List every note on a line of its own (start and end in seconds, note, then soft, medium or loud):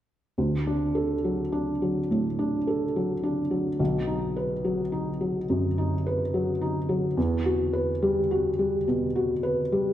0.38 2.06 D2 soft
0.67 1.13 D4 soft
0.95 1.41 A4 soft
1.24 1.70 F#3 soft
1.52 1.98 D4 soft
1.82 2.27 F#3 soft
2.11 2.56 A2 soft
2.39 2.84 D4 soft
2.67 3.12 A4 soft
2.96 3.41 F#3 soft
3.23 3.69 D4 soft
3.51 3.79 F#3 soft
3.79 5.44 B1 soft
4.07 4.52 D#4 soft
4.37 4.81 B4 soft
4.64 5.09 F#3 soft
4.92 5.37 D#4 soft
5.21 5.66 F#3 soft
5.50 5.94 F#2 soft
5.78 6.22 D#4 soft
6.07 6.50 B4 soft
6.34 6.78 F#3 soft
6.61 7.06 D#4 soft
6.89 7.17 F#3 soft
7.17 8.84 E2 soft
7.45 7.91 F#4 soft
7.73 8.19 B4 soft
8.02 8.48 G3 soft
8.31 8.76 F#4 soft
8.59 9.05 G3 soft
8.88 9.33 B2 soft
9.16 9.62 F#4 soft
9.43 9.90 B4 soft
9.72 9.93 G3 soft